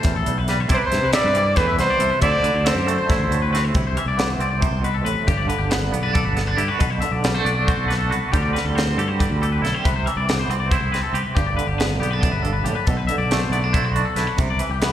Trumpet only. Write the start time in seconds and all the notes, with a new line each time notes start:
0.74 B4 C5
0.86 C5
1.13 D5
1.57 B4
1.79 C5
2.22 D5
2.67 C5